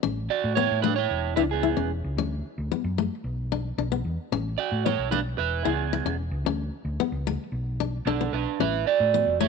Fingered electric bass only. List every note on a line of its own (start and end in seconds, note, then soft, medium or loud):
0.04 0.27 A1 medium
0.44 0.67 A2 medium
0.71 1.06 A2 medium
1.11 1.34 E1 medium
1.38 1.72 C#2 medium
1.77 2.00 E1 medium
2.04 2.16 C#2 medium
2.17 2.41 D2 medium
2.58 2.69 D2 medium
2.84 3.08 F#2 medium
3.24 3.71 B1 medium
3.78 4.01 B1 medium
4.05 4.16 E2 medium
4.32 4.55 A1 medium
4.72 4.95 A2 medium
4.99 5.33 B1 medium
5.38 5.62 E1 medium
5.65 6.00 C#2 medium
6.05 6.28 E1 medium
6.31 6.44 C#2 medium
6.45 6.69 D2 medium
6.85 6.97 D2 medium
7.12 7.36 C#2 medium
7.52 7.99 B1 medium
8.05 8.29 B1 medium
8.33 8.45 B1 medium
8.60 8.83 A1 medium
9.00 9.24 A2 medium
9.27 9.48 F1 medium